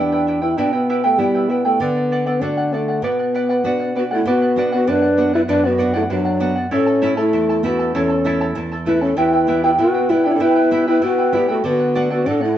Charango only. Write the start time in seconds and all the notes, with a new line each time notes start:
Already playing: E4 B4 E5 G5
0.12 E4 B4 G5
0.27 E4 B4 E5 G5
0.42 E4 B4 G5
0.57 E4 G4 B4 E5 G5
0.73 E4 B4 G5
0.89 E4 G4 B4 E5 G5
1.04 E4 G4 B4 E5 G5
1.19 E4 B4 E5 G5
1.34 E4 B4 G5
1.49 E4 B4 E5 G5
1.65 E4 B4 G5
1.81 A4 D5 F#5
1.96 D5 F#5
2.12 A4 D5 F#5
2.26 A4 D5 F#5
2.42 A4 D5 F#5
2.57 D5 F#5
2.73 A4 D5 F#5
2.88 D5 F#5
3.04 B4 D5 F#5
3.19 D5 F#5
3.34 B4 D5 F#5
3.49 B4 D5 F#5
3.65 B4 D5 F#5
3.80 D5 F#5
3.95 B4 D5 F#5
4.11 D5 F#5
4.27 B4 D5 F#5
4.41 D5 F#5
4.58 B4 D5 F#5
4.72 B4 D5 F#5
4.87 B4 D5 F#5
5.02 D5 F#5
5.17 B4 D5 F#5
5.33 D5 F#5
5.48 B4 D5 F#5
5.63 D5 F#5
5.78 B4 D5 F#5
5.93 B4 D5 F#5
6.10 B4 D5 F#5
6.25 D5 F#5
6.40 B4 D5 F#5
6.56 D5 F#5
6.71 E4 A4 C#5 E5 A5
6.86 E4 A4 A5
7.02 E4 A4 C#5 E5 A5
7.17 E4 A4 C#5 E5 A5
7.33 E4 A4 E5 A5
7.49 E4 A4 A5
7.64 E4 A4 E5 A5
7.79 E4 A4 A5
7.95 E4 A4 C#5 E5 A5
8.10 E4 A4 A5
8.26 E4 A4 C#5 E5 A5
8.41 E4 A4 C#5 E5 A5
8.56 E4 A4 E5 A5
8.72 E4 A4 A5
8.87 E4 A4 E5 A5
9.01 E4 A4 A5
9.17 E4 G4 B4 E5 G5
9.33 E4 B4 G5
9.48 E4 G4 B4 E5 G5
9.64 E4 G4 B4 E5 G5
9.79 E4 B4 E5 G5
9.94 E4 B4 G5
10.09 E4 B4 E5 G5
10.24 E4 B4 G5
10.40 E4 G4 B4 E5 G5
10.56 E4 B4 G5
10.71 E4 G4 B4 E5 G5
10.88 E4 G4 B4 E5 G5
11.02 E4 B4 E5 G5
11.18 E4 B4 G5
11.33 E4 B4 E5 G5
11.48 E4 B4 G5
11.65 A4 D5 F#5
11.79 D5 F#5
11.95 A4 D5 F#5
12.11 A4 D5 F#5
12.26 A4 D5 F#5
12.41 D5 F#5